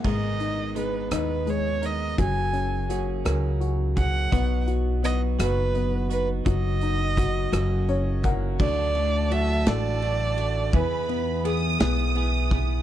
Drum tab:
CC |x-----|------|------|------|
RD |------|------|------|------|
HH |-xxxxx|xxxxxx|xxxxxx|xxxxxx|
SD |---r--|---r--|---r--|---r--|
BD |o-----|o----o|o-----|o-o--o|

CC |x-----|------|
RD |-xxxxx|xxxxxx|
HH |------|------|
SD |---o--|---o--|
BD |o-----|o----o|